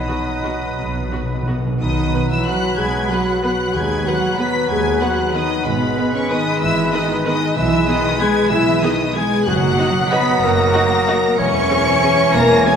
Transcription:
Already playing: B2 F#3 D#4 F#4 B4 D#5 B5 D#6
0.06 B2 B3 F#4 B4
0.23 B2
0.27 B2 F#5
0.40 B2
0.45 B2 B3 F#4 B4
0.57 B2
0.62 B2 F#4
0.73 B2
0.78 B1 B2
0.87 B2
0.93 B2 D#4
1.01 B2
1.09 B2 B3 F#4 B4
1.17 B2
1.26 B2 F#5
1.35 B2
1.43 B2 B4
1.47 B2 B3 F#4
1.60 B2
1.65 B2 F#4
1.80 B1 B2 D#3 F#3 D#4 B4 D#5 B5 D#6
1.97 B3
2.13 B3 B4
2.30 E3 E4 E5 F#5 E6
2.46 F#3 B3 F#4 B4 F#5 F#6
2.62 F#4
2.77 B1 B2 G#3 G#4 G#5 G#6
2.94 B3
3.09 F#3 B3 F#4 B4 F#5 F#6
3.27 F#5
3.43 F#3 B3 F#4 B4 F#5 F#6
3.59 F#4
3.74 D#2 D#3 F#3 G#3 G#4 B4 G#5 B5 G#6
3.90 B3
4.06 F#3 B3 F#4 B4 F#5 F#6
4.23 F#5
4.38 B3 B4 B5 B6
4.55 F#4
4.70 D#2 D#3 G#3 G#4 G#5 G#6
4.86 B3
5.01 F#3 B3 F#4 B4 F#5 F#6
5.18 F#5
5.34 D#3 B3 D#4 B4 D#5 D#6
5.51 F#4
5.65 G#1 G#2 B2 G#3 B3 B4 B5
5.81 B3
5.97 B3 B4
6.13 C#3 C#4 C#5 G#5 C#6
6.30 D#3 B3 D#4 B4 D#5 D#6
6.47 G#4
6.61 G#1 G#2 E3 E4 E5 E6
6.77 B3
6.93 D#3 B3 D#4 B4 D#5 D#6
7.09 G#5
7.25 D#3 B3 D#4 B4 D#5 D#6
7.41 G#4
7.55 B1 B2 E3 G#3 E4 B4 E5 B5 E6
7.71 B3
7.87 D#3 B3 D#4 G#4 B4 D#5 D#6
8.03 G#5
8.19 G#3 B3 G#4 B4 G#5 G#6
8.50 B1 B2 E3 E4 E5 E6
8.66 B3
8.82 D#3 B3 D#4 G#4 B4 D#5 D#6
8.99 G#5
9.14 G#3 B3 G#4 B4 G#5 G#6
9.32 G#4
9.45 F#1 F#2 F#3 F#4 D#5 F#5 F#6
9.63 A#3
9.78 D#4 F#4 D#5
9.96 F#5
10.11 B3 D#4 F#4 B4 D#5 B5 B6
10.27 F#4
10.42 F#1 F#2 A#3 A#4 A#5 A#6
10.57 A#3
10.73 D#4 F#4
10.90 F#5
11.07 D#4 F#4
11.22 F#4
11.38 E1 E2 E3 C#4 C#5 G#5 C#6 C#7
11.53 G#3
11.69 C#4 G#4 C#5
12.02 C#4 G#4 C#5
12.19 C#4
12.34 E1 E2 A#3 A#4 A#5 A#6
12.49 G#3
12.66 G#3 C#4 G#4 C#5 G#5 G#6

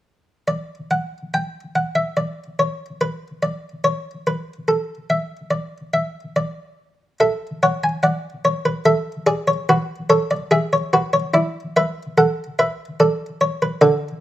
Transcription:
0.48 D5
0.91 F#5
1.34 G5
1.75 F#5
1.95 E5
2.17 D5
2.59 C#5
3.01 B4
3.43 D5
3.84 C#5
4.27 B4
4.68 A4
5.10 E5
5.51 D5
5.94 E5
6.36 D5
7.20 A4 E5
7.63 C#5 F#5
7.84 G#5
8.03 D5 F#5
8.45 C#5
8.65 B4
8.86 A4 E5
9.27 G#4 D5
9.48 C#5
9.69 F#4 B4
10.10 A4 C#5
10.31 D5
10.51 G#4 E5
10.73 C#5
10.93 F#4 B4
11.13 C#5
11.34 E4 D5
11.76 B4 E5
12.18 A4 F#5
12.59 B4 E5
13.00 A4 D5
13.41 C#5
13.62 B4
13.81 D3 A4 D5

